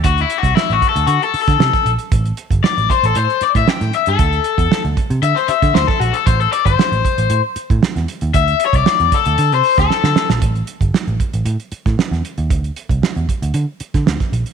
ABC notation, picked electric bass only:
X:1
M:4/4
L:1/16
Q:1/4=116
K:Ador
V:1 name="Picked electric bass" clef=bass
D,,2 z C,, z A,,, z D,, D, z2 D, C, z _B,,, z | A,,,2 z G,,, z A,,, z A,,, A,, z2 A,, z A,, z G,, | D,,2 z E,, z D,, z C, D, z2 D, D,, z _B,,, z | A,,,2 z G,,, z A,,, z A,,, A,, z2 A,, z E,, z ^D,, |
D,,2 z C,, z E,, z D,, D, C, z D,, z D, z _B,,, | A,,,2 z G,,, z A,,, z A,,, A,, z2 A,, z E,, z ^D,, | D,,2 z C,, z E,, z D,, D, z2 D, D,, z _B,,, z |]